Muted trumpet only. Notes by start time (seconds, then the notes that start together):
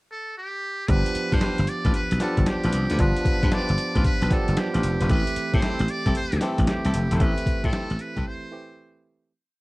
0.12 A4
0.38 G4
0.90 B4
1.34 C5
1.69 D5
1.95 B4
2.21 A4
2.48 G4
3.01 B4
3.53 D5
4.06 B4
4.32 A4
4.59 G4
5.11 B4
5.55 C5
5.90 D5
6.17 C5
6.69 G4
7.17 C5
7.22 B4
7.65 A4
8.01 B4
8.27 C5